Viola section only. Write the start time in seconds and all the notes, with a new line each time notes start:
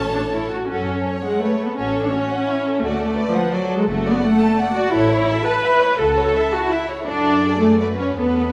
Already playing: C#4
0.14 D4
0.33 E4
0.52 F#4
0.70 C#4
1.25 G#3
1.43 A3
1.66 B3
1.79 C#4
2.02 D4
2.13 C#4
2.83 A3
3.35 F3
3.54 F#3
3.78 G#3
3.89 A3
4.13 B3
4.24 A3
4.76 F#4
4.93 E4
5.47 B4
5.99 A4
6.52 F#4
6.71 E4
7.08 D4
7.61 A3
7.81 A3
7.99 C#4
8.18 B3